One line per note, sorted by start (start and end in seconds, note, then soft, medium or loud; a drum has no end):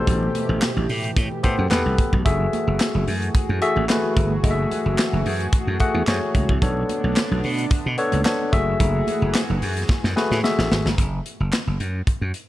0.00 0.67 B2 medium
0.00 2.22 B2 medium
0.00 2.23 E3 medium
0.00 10.94 A3 medium
0.00 0.68 G4 medium
0.00 2.23 G4 medium
0.00 0.68 A4 medium
0.00 0.71 C5 loud
0.07 0.28 A1 loud
0.07 kick loud
0.07 closed hi-hat medium
0.07 muted conga soft
0.07 low conga medium
0.23 muted conga soft
0.35 closed hi-hat medium
0.35 high conga medium
0.49 0.59 A1 loud
0.49 high conga medium
0.62 snare loud
0.62 clap loud
0.62 closed hi-hat loud
0.77 0.86 A1 loud
0.77 low conga medium
0.89 1.10 A2 loud
0.89 open hi-hat medium
1.04 closed hi-hat medium
1.16 1.28 A2 loud
1.16 kick loud
1.16 closed hi-hat loud
1.31 muted conga soft
1.43 1.55 A2 medium
1.43 1.65 B3 medium
1.43 1.66 G4 medium
1.43 1.66 A4 medium
1.43 1.66 C5 medium
1.43 kick medium
1.43 closed hi-hat medium
1.58 1.68 F#2 medium
1.58 high conga medium
1.70 1.82 E2 medium
1.70 2.15 B3 medium
1.70 2.15 G4 medium
1.70 2.15 A4 medium
1.70 2.15 B4 medium
1.70 snare loud
1.70 clap medium
1.70 closed hi-hat medium
1.86 1.95 C2 medium
1.86 muted conga soft
1.98 kick loud
1.98 closed hi-hat medium
1.98 high conga medium
2.13 2.23 B1 loud
2.13 kick loud
2.25 2.46 F#1 loud
2.25 6.58 E3 medium
2.25 3.12 A3 medium
2.25 3.12 F#4 medium
2.25 6.58 F#4 medium
2.25 3.13 G#4 medium
2.25 6.58 G#4 medium
2.25 3.13 E5 medium
2.25 kick loud
2.25 closed hi-hat medium
2.25 muted conga soft
2.25 low conga medium
2.41 muted conga soft
2.53 closed hi-hat medium
2.53 high conga medium
2.67 2.77 F#1 medium
2.67 high conga medium
2.80 snare loud
2.80 clap loud
2.80 closed hi-hat loud
2.95 3.04 F#1 loud
2.95 muted conga soft
2.95 low conga medium
3.07 3.28 F#2 loud
3.07 open hi-hat medium
3.22 closed hi-hat medium
3.34 muted slap bass stroke soft
3.34 kick loud
3.34 closed hi-hat medium
3.34 muted conga soft
3.49 3.59 F#2 medium
3.49 muted conga soft
3.61 3.84 A3 medium
3.61 3.84 F#4 medium
3.61 3.84 G#4 medium
3.61 3.84 E5 loud
3.61 closed hi-hat medium
3.76 3.86 A1 medium
3.76 high conga medium
3.89 4.33 A3 medium
3.89 4.33 F#4 medium
3.89 4.33 G#4 medium
3.89 4.33 B4 medium
3.89 snare loud
3.89 clap loud
3.89 closed hi-hat medium
4.05 muted conga soft
4.17 4.37 G1 medium
4.17 kick loud
4.17 closed hi-hat medium
4.17 high conga medium
4.43 4.64 F#1 loud
4.43 5.31 A3 medium
4.43 5.31 F#4 medium
4.43 5.31 G#4 medium
4.43 4.51 D#5 medium
4.43 kick loud
4.43 closed hi-hat medium
4.43 low conga medium
4.51 5.34 E5 medium
4.59 muted conga soft
4.71 closed hi-hat medium
4.71 high conga medium
4.86 4.95 F#1 loud
4.86 high conga medium
4.98 snare loud
4.98 clap loud
4.98 closed hi-hat loud
4.98 muted conga soft
5.13 5.23 F#1 medium
5.13 muted conga soft
5.13 low conga medium
5.26 5.46 F#2 loud
5.26 open hi-hat medium
5.40 closed hi-hat medium
5.53 muted slap bass stroke medium
5.53 kick loud
5.53 closed hi-hat medium
5.67 5.77 F#2 loud
5.67 muted conga soft
5.80 6.02 A3 medium
5.80 6.02 F#4 medium
5.80 6.02 G#4 medium
5.80 6.02 F#5 loud
5.80 kick medium
5.80 closed hi-hat medium
5.94 6.04 E2 medium
5.94 high conga medium
6.07 6.18 F#2 loud
6.07 6.51 A3 medium
6.07 6.52 F#4 medium
6.07 6.52 G#4 medium
6.07 6.52 C#5 medium
6.07 snare loud
6.07 clap medium
6.07 closed hi-hat medium
6.23 muted conga soft
6.35 6.46 C#2 medium
6.35 kick loud
6.35 closed hi-hat medium
6.35 high conga medium
6.49 6.59 C2 medium
6.49 kick medium
6.61 6.83 B1 loud
6.61 8.51 D3 medium
6.61 8.51 B3 medium
6.61 7.49 B3 medium
6.61 8.51 D4 medium
6.61 7.49 D4 medium
6.61 7.49 A4 medium
6.61 7.49 C#5 medium
6.61 kick loud
6.61 closed hi-hat medium
6.61 muted conga soft
6.61 low conga medium
6.77 muted conga soft
6.89 closed hi-hat medium
6.89 high conga medium
7.04 7.13 B1 medium
7.04 high conga medium
7.16 snare loud
7.16 clap loud
7.16 closed hi-hat loud
7.31 7.41 B1 loud
7.31 low conga medium
7.44 7.65 B2 loud
7.44 open hi-hat medium
7.58 closed hi-hat medium
7.70 muted slap bass stroke medium
7.70 kick loud
7.70 closed hi-hat loud
7.70 muted conga soft
7.86 7.96 B2 medium
7.98 8.20 B3 medium
7.98 8.20 D4 medium
7.98 8.20 A4 medium
7.98 8.21 C#5 loud
7.98 closed hi-hat medium
8.12 8.23 C#2 medium
8.12 closed hi-hat medium
8.12 high conga medium
8.25 8.53 B3 medium
8.25 8.53 D4 medium
8.25 8.53 A4 medium
8.25 8.53 C#5 medium
8.25 snare loud
8.25 clap medium
8.25 closed hi-hat medium
8.41 muted conga soft
8.52 8.74 F#1 loud
8.52 10.96 E3 medium
8.52 9.40 A3 medium
8.52 9.40 F#4 medium
8.52 10.96 F#4 medium
8.52 9.40 G#4 medium
8.52 10.96 G#4 medium
8.52 9.40 E5 loud
8.52 kick loud
8.52 closed hi-hat medium
8.52 high conga medium
8.80 9.01 F#1 loud
8.80 kick loud
8.80 closed hi-hat medium
8.80 muted conga soft
8.80 low conga medium
8.95 muted conga soft
9.07 closed hi-hat medium
9.07 high conga medium
9.22 9.32 F#1 loud
9.22 high conga medium
9.35 snare loud
9.35 clap loud
9.35 closed hi-hat loud
9.35 muted conga soft
9.50 9.59 F#1 loud
9.50 muted conga soft
9.50 low conga medium
9.62 9.83 F#2 loud
9.62 open hi-hat medium
9.77 closed hi-hat medium
9.89 muted slap bass stroke soft
9.89 kick loud
9.89 snare medium
9.89 muted conga soft
10.04 10.14 F#2 medium
10.04 snare medium
10.04 muted conga soft
10.16 10.38 A3 medium
10.16 10.38 F#4 medium
10.16 10.38 G#4 medium
10.16 10.39 B4 loud
10.16 snare medium
10.31 10.41 A2 medium
10.31 snare medium
10.31 high conga medium
10.43 10.50 G#3 medium
10.43 10.88 F#4 medium
10.43 10.88 G#4 medium
10.43 10.88 E5 medium
10.43 snare medium
10.43 muted conga soft
10.50 10.91 A3 medium
10.58 10.68 A1 loud
10.58 snare medium
10.71 10.82 G#1 loud
10.71 snare loud
10.71 high conga medium
10.86 10.95 G1 medium
10.86 snare medium
10.98 11.19 F#1 medium
10.98 kick loud
10.98 closed hi-hat medium
11.26 closed hi-hat medium
11.40 11.50 F#1 medium
11.53 snare loud
11.53 clap medium
11.53 closed hi-hat loud
11.67 11.77 F#1 medium
11.80 12.01 F#2 medium
11.80 closed hi-hat medium
12.07 muted slap bass stroke soft
12.07 kick loud
12.07 closed hi-hat medium
12.21 12.31 F#2 medium
12.34 closed hi-hat medium